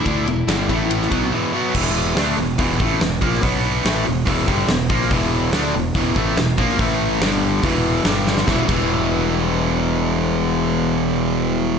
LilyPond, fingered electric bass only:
\new Staff \with { instrumentName = "Fingered electric bass" } { \clef bass \time 4/4 \key e \minor \tempo 4 = 142 d,8 e,,8 g,,8 a,,4 b,,8 r4 | e,,4 d,8 e,,8 e,,8 a,,8 e,,8 ais,,8 | b,,4 a,,8 e,,8 e,,8 g,,8 e,,8 ais,,8 | e,,4 d,8 e,,8 e,,8 a,,8 e,,8 ais,,8 |
a,,4 g,,4 e,,4 g,,4 | e,,8 e,,2.~ e,,8~ | e,,1 | }